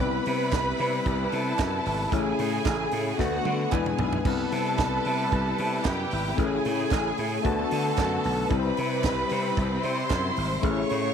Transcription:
Already playing: B4
0.00 C2 C3 G3 B3 C4 D#4 E4 B4 B5
0.07 E4
0.26 C3, open hi-hat
0.52 C2, kick, snare, clap, closed hi-hat
0.78 C3, open hi-hat
1.06 C2, kick, closed hi-hat
1.32 C3 A4 A5, open hi-hat
1.59 F#2, kick, snare, clap, closed hi-hat
1.86 G#1, open hi-hat
2.11 A1 C#3 A3 C#4 E4 G#4 C#5 G#5, kick, closed hi-hat
2.39 A2, open hi-hat
2.65 A1, kick, snare, clap, closed hi-hat
2.91 A2, open hi-hat
3.18 D2 D3 A3 B3 D4 F#4 B4 F#5, kick, snare
3.45 D3, high tom
3.71 E2 G#3 B3 D4 E4 G#4 B4 G#5, kick, clap, mid tom
3.86 mid tom
3.99 B1, floor tom
4.13 floor tom
4.25 C2 C3 G3 B3 C4 E4 A4 B4 A5, kick, crash
4.52 C3, open hi-hat
4.79 C2, kick, snare, clap, closed hi-hat
5.04 C3, open hi-hat
5.32 C2, kick, closed hi-hat
5.58 C3, open hi-hat
5.84 F#2 G4 G5, kick, snare, clap, closed hi-hat
6.11 G#1, open hi-hat
6.36 A1 C#3 A3 C#4 E4 G#4 B4 G#5, kick, closed hi-hat
6.46 C#5
6.65 A2, open hi-hat
6.91 A1, kick, snare, clap, closed hi-hat
7.17 A2, open hi-hat
7.43 D2 D3 A3 B3 D4 F#4 A4 B4 A5, kick, closed hi-hat
7.71 D3, open hi-hat
7.97 F#2, kick, snare, clap, closed hi-hat
8.24 B1, open hi-hat
8.49 C2 C3 G3 C4 E4 G4 B4 B5, kick, closed hi-hat
8.59 C5
8.77 C3, open hi-hat
9.04 C2, kick, snare, clap, closed hi-hat
9.29 C3, open hi-hat
9.57 C2, kick, closed hi-hat
9.83 C3 C5 C6, open hi-hat
10.10 F#2, kick, snare, clap, closed hi-hat
10.36 G#1, open hi-hat
10.62 A1 C#3 A3 C#4 E4 G#4 B4 C#5 C#6, kick, closed hi-hat
10.71 C#5
10.89 A2, open hi-hat

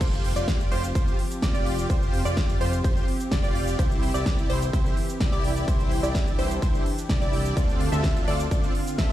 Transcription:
0.01 F1 F3 C4 F4 G4 C5, kick, closed hi-hat, ride, crash, shaker
0.13 shaker
0.24 open hi-hat
0.36 F1 F4 G4 D5, closed hi-hat, shaker
0.48 kick, snare, closed hi-hat, ride, shaker
0.60 shaker
0.72 F1 F4 G4 C5, open hi-hat
0.83 closed hi-hat, shaker
0.95 F1 F4 G4 C5, kick, closed hi-hat, ride, shaker
1.08 shaker
1.19 open hi-hat
1.31 closed hi-hat, shaker
1.42 F1 F4 G4 D5, kick, snare, closed hi-hat, ride, shaker
1.54 F1 F4 G4 D5, closed hi-hat, shaker
1.66 open hi-hat
1.78 closed hi-hat, shaker
1.90 F1 F4 G4 C5, kick, closed hi-hat, ride, shaker
2.02 shaker
2.13 open hi-hat
2.25 F1 F4 G4 D5, closed hi-hat, shaker
2.37 kick, snare, closed hi-hat, ride, shaker
2.50 shaker
2.61 F1 F4 G4 C5, open hi-hat
2.73 closed hi-hat, shaker
2.84 F1 F4 G4 C5, kick, closed hi-hat, ride, shaker
2.97 shaker
3.08 open hi-hat
3.20 closed hi-hat, shaker
3.31 F1 F4 G4 D5, kick, snare, closed hi-hat, ride, shaker
3.43 F1 F4 G4 D5, closed hi-hat, shaker
3.55 open hi-hat
3.68 shaker
3.79 C2 E3 E4 G4 C5, kick, closed hi-hat, ride, shaker
3.91 shaker
4.03 open hi-hat
4.14 C2 E4 G4 D5, closed hi-hat, shaker
4.26 kick, snare, closed hi-hat, ride, shaker
4.38 shaker
4.50 C2 E4 G4 C5, open hi-hat
4.62 closed hi-hat, shaker
4.73 C2 E4 G4 C5, kick, closed hi-hat, ride, shaker
4.86 shaker
4.97 open hi-hat
5.09 closed hi-hat, shaker
5.20 C2 E4 G4 D5, kick, snare, closed hi-hat, ride, shaker
5.32 C2 E4 G4 D5, closed hi-hat, shaker
5.44 open hi-hat
5.56 closed hi-hat, shaker
5.68 C2 D4 E4 G4 C5, kick, closed hi-hat, ride, shaker
5.80 closed hi-hat, shaker
5.91 open hi-hat
6.03 C2 E4 G4 D5, closed hi-hat, shaker
6.15 kick, snare, closed hi-hat, ride, shaker
6.27 shaker
6.39 C2 E4 G4 C5, open hi-hat
6.51 closed hi-hat, shaker
6.62 C2 E4 G4 C5, kick, closed hi-hat, ride, shaker
6.75 shaker
6.86 open hi-hat
6.98 closed hi-hat, shaker
7.09 C2 E4 G4 D5, kick, snare, closed hi-hat, ride, shaker
7.21 C2 E4 G4 D5, closed hi-hat, shaker
7.33 open hi-hat
7.45 closed hi-hat, shaker
7.57 D2 D3 C4 D4 F4 A4 D5, kick, closed hi-hat, ride, shaker
7.69 shaker
7.80 open hi-hat
7.92 D2 C4 D4 F4 A4 E5, shaker
8.04 kick, snare, closed hi-hat, ride, shaker
8.16 shaker
8.28 D2 C4 D4 F4 A4 D5, open hi-hat
8.39 closed hi-hat, shaker
8.51 D2 C4 D4 F4 A4 D5, kick, closed hi-hat, ride, shaker
8.64 shaker
8.75 open hi-hat
8.87 closed hi-hat, shaker
8.98 D2 C4 D4 F4 A4 E5, kick, snare, closed hi-hat, ride, shaker

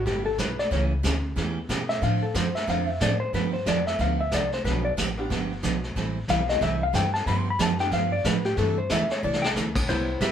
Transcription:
0.06 G1 C3 G3 B3 E4 G4, brush sweep, kick, snare
0.26 A4
0.38 B1 C3 G3 B3 E4 G4 B4, kick, snare, hi-hat pedal
0.59 D5, snare
0.71 C#2 C#3 E3 A3 C#4 G4 C#5, brush sweep, kick, snare
1.03 D2 C#3 E3 A3 C#4 G4, kick, snare, hi-hat pedal
1.36 E2 C#3 E3 A3 C#4 G4, brush sweep, kick, snare
1.69 B2 C#3 E3 A3 C#4 G4, kick, snare, hi-hat pedal
1.89 E5, snare
2.02 A2 D3 F3 C4 D4 A4 F5, brush sweep, kick, snare
2.23 A4
2.34 F#2 D3 F3 C4 D4 A4 C5, kick, snare, hi-hat pedal
2.55 E5, snare
2.67 F2 D3 F3 C4 D4 A4 F5, brush sweep, kick, snare
2.89 E5
3.00 A2 D3 F3 C4 D4 A4 D5, kick, snare, hi-hat pedal
3.20 C5
3.33 G2 D3 F3 B3 D4 G4 B4, brush sweep, kick, snare
3.53 C5
3.66 F2 D3 F3 B3 D4 G4 D5, kick, snare, hi-hat pedal
3.87 E5, snare
3.99 D2 D3 F3 B3 D4 G4 F5, brush sweep, kick, snare
4.21 E5
4.32 C2 D3 F3 B3 D4 G4 D5, kick, snare, hi-hat pedal
4.52 C5, snare
4.65 B1 D3 F3 B3 D4 G4 B4, brush sweep, kick, snare
4.85 D5
4.97 A1 D3 F3 B3 D4 G4, kick, snare, hi-hat pedal
5.17 G3 B3 D4 F4 G4
5.30 G1 D3 F3 B3 D4 G4, brush sweep, kick, snare
5.63 B1 D3 F3 B3 D4 G4, kick, snare, hi-hat pedal
5.83 snare
5.95 A1 E3 G3 C4 E4 A4, brush sweep, kick, snare
6.28 B1 E3 G3 C4 E4 A4 F5, kick, snare, hi-hat pedal
6.48 A3 B3 C4 E4 G4 D#5, snare
6.61 C2 E3 G3 C4 E4 A4 E5, brush sweep, kick, snare
6.83 F5
6.93 G2 E3 G3 C4 E4 A4 G5, kick, snare, hi-hat pedal
7.14 A5, snare
7.26 G2 D3 F3 B3 D4 G4 B5, brush sweep, kick, snare
7.39 C6
7.50 B5
7.59 F#2 D3 F3 B3 D4 G4 A5, kick, snare, hi-hat pedal
7.78 G3 B3 D4 F4 G4 G5, snare
7.91 G2 D3 F3 B3 D4 G4 F5, brush sweep, kick, snare
8.12 D5
8.24 A2 D3 F3 B3 D4 G4 B4, kick, snare, hi-hat pedal
8.44 G4, snare
8.56 G2 C3 E3 A3 C4 D4 E4 G4 A4, brush sweep, kick, snare
8.78 C5
8.89 E2 C3 E3 A3 E4 A4 E5, kick, snare, hi-hat pedal
9.10 C#5, snare
9.23 C2 C3 E3 A3 E4 A4 D5
9.33 snare
9.42 G5, snare
9.55 D2 C3 E3 A3 E4 A4, snare, hi-hat pedal
9.75 kick, crash
9.88 C2 C3 G3 B3 E4 G4 C5, brush sweep, kick, snare
10.21 A1 C3 G3 B3 E4 G4 E5, kick, snare, hi-hat pedal

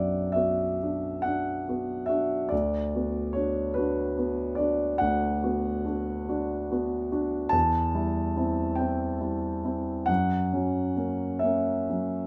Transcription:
Already playing: F#2 B3 D4 F#4 D5 E5 F#5 G5
0.32 B3 F#4 E5
0.82 D4 F#4
1.22 D4 F#4 F#5
1.69 B3 F#4
2.06 D4 F#4 E5
2.49 D2 D5
2.95 B3 F#4
3.33 D4 F#4 C#5
3.74 D4 F#4 B4
4.17 B3 F#4
4.55 D4 F#4 D5
4.98 D2 F#5
5.43 B3 F#4
5.85 D4 F#4
6.29 D4 F#4
6.71 B3 F#4
7.12 D4 F#4
7.49 E2 A5
7.94 G3 E4
8.37 C4 E4
8.76 C4 E4 G5
9.21 G3 E4
9.65 C4 E4
10.06 F#2 F#5
10.53 F#3 C#4
10.96 A#3 C#4
11.39 A#3 C#4 E5
11.90 F#3 C#4

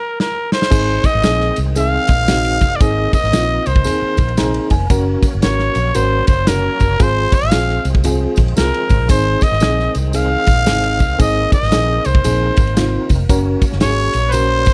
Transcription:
Already playing: A#4
0.20 A#4, snare
0.52 C5, snare
0.62 snare
0.70 G#1 D#3 G#3 C4 D#4 G#4, kick, crash, tambourine, muted conga
1.03 D#5, kick, ride, tambourine, muted conga
1.15 G#1
1.22 A#1 C4 D#4 G#4, snare, ride, tambourine, high conga
1.40 snare
1.56 C2, ride, tambourine
1.75 C4 D#4 G#4 F5, ride, tambourine, muted conga
2.08 A#1, kick, ride, tambourine, low conga
2.28 C4 D#4 F#4, snare, ride, tambourine, high conga
2.45 ride
2.60 F#1, kick, ride, tambourine, high conga
2.76 D5
2.80 G#1 A#3 C4 D#4 G#4 D#5, kick, ride, tambourine, muted conga
3.12 D#5, kick, ride, tambourine, muted conga
3.23 G#1, snare
3.32 A#1 C4 D#4 F4, snare, ride, tambourine, high conga
3.66 C2 C5, ride, tambourine
3.76 kick
3.84 C4 D#4 G#4, ride, tambourine, muted conga, low conga
4.02 muted fingered electric bass stroke
4.17 A#1, kick, ride, tambourine, low conga
4.28 ride
4.37 C4 D#4 G#4 A#5, snare, ride, tambourine, high conga
4.54 ride
4.70 F1 G#5, kick, open hi-hat, ride, tambourine, high conga
4.90 F#1 F#3 A#3 C#4 F#4 A#4, kick, hi-hat pedal, ride, tambourine, muted conga
5.23 kick, ride, tambourine, muted conga
5.35 F#1
5.42 G#1 C#4 F#4 A#4 C#5, snare, ride, tambourine, high conga
5.59 snare
5.75 A#1, ride, tambourine
5.95 G#1 C#4 F#4 A#4 C5, ride, tambourine, muted conga
6.27 F#1 C5, kick, ride, tambourine, low conga
6.47 C#4 F#4 A#4, snare, ride, tambourine, high conga
6.80 F#1, kick, ride, tambourine, high conga
6.99 G#1 F3 G#3 C4 F4 G#4 C5, kick, ride, tambourine, muted conga
7.32 F5, kick, ride, tambourine, muted conga
7.43 G#1
7.51 A#1 C4 F4 G#4, snare, ride, tambourine, high conga
7.69 snare
7.85 C2, ride, tambourine
7.95 kick
8.04 C4 F4 G#4, ride, tambourine, muted conga, low conga
8.36 A#1, kick, ride, tambourine, low conga
8.48 ride
8.57 C2 C4 F4 G#4 A#4, snare, ride, tambourine, high conga
8.74 ride
8.89 G#1, kick, open hi-hat, ride, tambourine, high conga
9.00 A#1
9.09 G#1 D#3 C4 D#4 G#4 C5, kick, hi-hat pedal, ride, tambourine, muted conga
9.41 D#5, kick, ride, tambourine
9.52 G#1, snare
9.60 A#1 C4 D#4 G#4, snare, ride, tambourine, high conga
9.79 snare
9.95 C2, ride, tambourine
10.13 C4 D#4 G#4 F5, ride, tambourine, muted conga
10.46 A#1, kick, ride, tambourine, low conga
10.66 G#1 C4 D#4 G#4, snare, ride, tambourine, high conga
10.83 ride
11.00 C2, kick, ride, tambourine, high conga
11.19 G#1 A#3 C4 D#4 G#4 D#5, kick, ride, tambourine, muted conga
11.52 D#5, kick, ride, tambourine, muted conga
11.63 G#1, snare
11.72 A#1 C4 D#4 G#4, snare, ride, tambourine, high conga
12.05 C2 C5, ride, tambourine
12.15 kick
12.24 A#1 C4 D#4 G#4, ride, tambourine, muted conga, low conga
12.57 G#1, kick, ride, tambourine, low conga
12.67 ride
12.77 C4 D#4 F4, snare, ride, tambourine, high conga
13.09 F1, kick, open hi-hat, ride, tambourine, high conga
13.29 F#1 F#3 C#4 F#4 A#4, kick, hi-hat pedal, ride, tambourine, muted conga
13.61 kick, ride, tambourine
13.72 F#1, snare
13.80 G#1 C#4 F#4 G#4 C#5, snare, ride, tambourine, high conga
14.13 A#1, ride, tambourine
14.29 B4 C5, tambourine
14.33 C#4 F#4 A#4, ride, muted conga
14.65 G#1, kick, ride, tambourine, low conga

